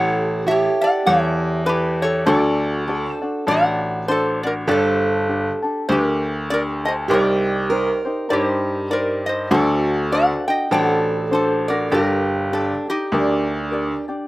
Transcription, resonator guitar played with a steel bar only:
0.00 0.44 C#5 medium
0.00 0.47 F#5 loud
0.48 0.82 C#5 medium
0.48 0.83 E5 medium
0.81 1.06 D5 medium
0.81 1.06 F#5 loud
1.07 1.64 C#5 medium
1.07 1.69 E5 medium
1.66 2.01 G4 medium
1.66 2.03 B4 medium
2.02 2.26 A4 medium
2.02 2.26 C#5 medium
2.26 3.44 A4 medium
2.26 3.11 D5 medium
3.11 3.50 C5 medium
3.48 4.05 D5 medium
3.48 4.10 F#5 loud
4.08 4.43 A4 medium
4.08 4.43 C5 medium
4.43 4.53 A#4 medium
4.43 4.50 D5 medium
4.69 5.86 A4 medium
4.69 5.85 C5 medium
5.89 6.46 G4 medium
5.89 6.51 A#4 medium
6.50 6.62 A#4 medium
6.50 6.60 D5 medium
6.85 6.94 C5 medium
6.85 6.92 D#5 medium
7.11 8.28 A#4 medium
7.11 8.34 D5 medium
8.30 8.88 G4 medium
8.30 8.92 C5 medium
8.91 9.24 A#4 medium
8.91 9.26 D5 medium
9.26 9.50 C5 medium
9.26 9.51 D#5 medium
9.51 10.08 A4 medium
9.51 10.13 D5 loud
10.12 10.46 D5 medium
10.12 10.44 F#5 medium
10.48 10.71 D#5 medium
10.48 10.72 G5 medium
10.72 11.29 D5 medium
10.72 11.28 F#5 medium
11.33 11.66 A4 medium
11.33 11.68 C5 medium
11.68 11.91 A#4 medium
11.68 11.93 D5 medium
11.92 12.49 G4 medium
11.92 12.53 A#4 medium
12.53 12.86 D4 medium
12.53 12.89 A4 medium
12.90 14.05 D#4 medium
12.90 14.05 G4 medium

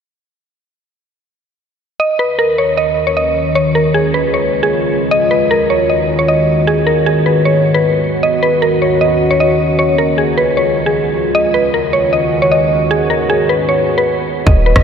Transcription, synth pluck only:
2.00 2.17 D#5 medium
2.19 2.36 B4 medium
2.39 2.56 A#4 medium
2.58 2.75 C#5 medium
2.77 3.05 D#5 medium
3.07 3.15 C#5 medium
3.17 3.53 D#5 medium
3.55 3.73 C#5 medium
3.75 3.92 A#4 medium
3.94 4.12 G#4 medium
4.14 4.31 B4 medium
4.34 4.61 C#5 medium
4.63 5.09 G#4 medium
5.11 5.29 D#5 loud
5.31 5.48 B4 medium
5.51 5.68 A#4 medium
5.70 5.87 C#5 medium
5.90 6.17 D#5 medium
6.19 6.27 C#5 medium
6.28 6.65 D#5 medium
6.67 6.84 G#4 medium
6.87 7.04 A#4 medium
7.06 7.23 G#4 medium
7.26 7.43 B4 medium
7.45 7.73 C#5 medium
7.74 8.20 B4 medium
8.23 8.40 D#5 medium
8.43 8.60 B4 medium
8.62 8.79 A#4 medium
8.82 8.99 C#5 medium
9.01 9.29 D#5 medium
9.31 9.39 C#5 medium
9.40 9.77 D#5 medium
9.79 9.96 C#5 medium
9.98 10.16 A#4 medium
10.18 10.35 G#4 medium
10.38 10.55 B4 medium
10.57 10.85 C#5 medium
10.86 11.32 G#4 medium
11.35 11.52 D#5 loud
11.54 11.71 B4 medium
11.74 11.91 A#4 medium
11.93 12.10 C#5 medium
12.13 12.40 D#5 medium
12.42 12.51 C#5 medium
12.52 12.88 D#5 medium
12.91 13.08 G#4 medium
13.10 13.27 A#4 medium
13.30 13.47 G#4 medium
13.49 13.66 B4 medium
13.69 13.96 C#5 medium
13.98 14.44 B4 medium
14.46 14.64 D#5 medium
14.66 14.83 B4 medium

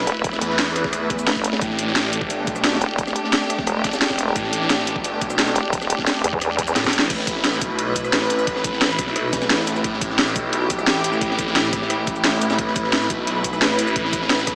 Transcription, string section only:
0.00 7.06 A3 medium
0.00 1.58 E4 medium
0.00 1.59 B4 medium
1.61 7.06 D4 medium
1.61 7.08 G4 medium
7.10 14.55 A3 medium
7.10 14.55 E4 medium
7.10 9.83 B4 medium
9.84 12.58 G4 medium
12.59 14.55 B4 medium

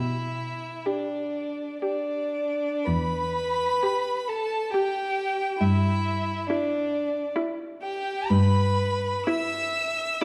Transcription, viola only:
0.86 1.59 G4 soft
1.82 2.62 G4 soft
3.83 4.51 G4 medium
4.74 5.40 G4 medium
6.50 7.17 E4 medium
7.36 8.06 E4 medium
9.27 9.99 E4 medium

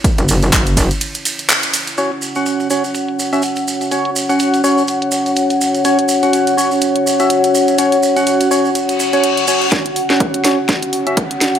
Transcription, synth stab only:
1.98 2.11 C#4 medium
1.98 2.11 F#4 medium
1.98 2.11 C#5 loud
2.36 2.68 C#4 medium
2.36 2.68 F#4 medium
2.36 2.68 F#5 medium
2.70 2.83 C#4 medium
2.70 2.83 F#4 medium
2.70 2.83 C#5 medium
3.33 3.42 C#4 medium
3.33 3.42 F#4 medium
3.33 3.42 E5 medium
3.91 4.10 C#4 medium
3.91 4.10 F#4 medium
3.91 4.10 C#5 medium
4.29 4.61 C#4 medium
4.29 4.61 F#4 medium
4.29 4.61 F#5 medium
4.64 4.83 C#4 medium
4.64 4.83 F#4 medium
4.64 4.83 C#5 loud
5.85 5.98 C#4 medium
5.85 5.98 F#4 medium
5.85 5.98 C#5 loud
6.23 6.55 C#4 medium
6.23 6.55 F#4 medium
6.23 6.55 F#5 medium
6.57 6.70 C#4 medium
6.57 6.70 F#4 medium
6.57 6.70 C#5 medium
7.20 7.29 C#4 medium
7.20 7.29 F#4 medium
7.20 7.29 E5 medium
7.78 7.97 C#4 medium
7.78 7.97 F#4 medium
7.78 7.97 C#5 medium
8.16 8.49 C#4 medium
8.16 8.49 F#4 medium
8.16 8.49 F#5 medium
8.51 8.70 C#4 medium
8.51 8.70 F#4 medium
8.51 8.70 C#5 loud
9.13 9.45 C#4 medium
9.13 9.45 F#4 medium
9.13 9.45 C#5 medium
9.48 9.67 C#4 medium
9.48 9.67 F#4 medium
9.48 9.67 C#5 medium
9.72 9.85 C#4 medium
9.72 9.85 F#4 medium
9.72 9.85 C#5 loud
10.10 10.42 C#4 medium
10.10 10.42 F#4 medium
10.10 10.42 F#5 medium
10.44 10.57 C#4 medium
10.44 10.57 F#4 medium
10.44 10.57 C#5 medium
11.07 11.16 C#4 medium
11.07 11.16 F#4 medium
11.07 11.16 E5 loud

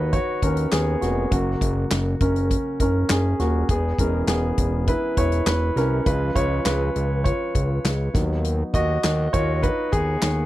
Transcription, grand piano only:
0.00 1.33 D#3 soft
0.00 1.32 F#3 soft
0.00 0.73 B3 soft
0.00 1.33 D#4 medium
0.00 0.14 F#4 medium
0.00 1.33 B4 medium
0.00 0.13 C#5 medium
0.00 1.34 D#5 medium
0.13 0.41 F#4 medium
0.13 0.40 C#5 medium
0.43 0.71 C#4 medium
0.43 0.73 A#4 medium
0.72 1.00 B3 medium
0.72 1.03 G#4 medium
1.01 1.30 A#3 soft
1.01 1.31 F#4 medium
1.31 3.65 C#3 soft
1.31 3.65 F#3 soft
1.31 1.87 A#3 medium
1.31 1.87 F#4 medium
2.21 2.77 C#4 medium
2.21 2.76 A#4 medium
2.81 2.89 C#4 medium
2.81 2.87 A#4 medium
3.11 3.39 C#4 medium
3.11 3.41 G#4 medium
3.40 3.68 A#3 soft
3.40 3.67 F#4 medium
3.70 3.98 B3 medium
3.70 4.00 G#4 medium
3.99 6.03 E3 soft
3.99 6.03 G#3 soft
3.99 4.28 B3 soft
3.99 4.27 C#4 medium
3.99 4.30 A#4 medium
4.28 4.84 B3 medium
4.28 4.89 G#4 medium
4.88 5.16 E4 medium
4.88 5.16 B4 medium
5.18 5.46 E4 medium
5.18 5.48 C#5 medium
5.46 5.75 E4 medium
5.46 5.77 B4 medium
5.77 6.05 C#4 medium
5.77 6.08 A#4 medium
6.06 6.46 F3 soft
6.06 6.46 G#3 soft
6.06 6.47 C#4 medium
6.06 6.35 F4 medium
6.06 6.37 B4 medium
6.36 6.64 F4 medium
6.36 6.67 C#5 medium
6.65 7.22 F4 medium
6.65 7.27 B4 medium
7.24 8.11 F4 medium
7.24 8.10 C#5 medium
8.13 8.99 F#3 soft
8.13 9.00 B3 soft
8.13 9.00 D#4 medium
8.74 9.30 F#4 medium
8.74 9.30 D#5 medium
9.33 9.62 F4 medium
9.33 9.64 C#5 medium
9.63 9.91 D#4 medium
9.63 9.91 B4 medium
9.92 10.46 B3 medium
9.92 10.46 G#4 loud

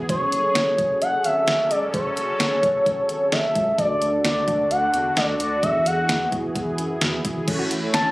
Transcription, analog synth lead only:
0.09 0.98 C#5 loud
1.01 1.26 F#5 loud
1.25 1.70 E5 loud
1.71 1.81 D5 medium
1.94 3.34 C#5 loud
3.32 3.78 E5 loud
3.78 4.21 D5 loud
4.25 4.68 D5 medium
4.71 5.18 F#5 loud
5.17 5.39 D5 medium
5.40 5.65 D5 medium
5.63 5.86 E5 loud
5.86 6.29 F#5 medium
7.94 8.12 A5 loud

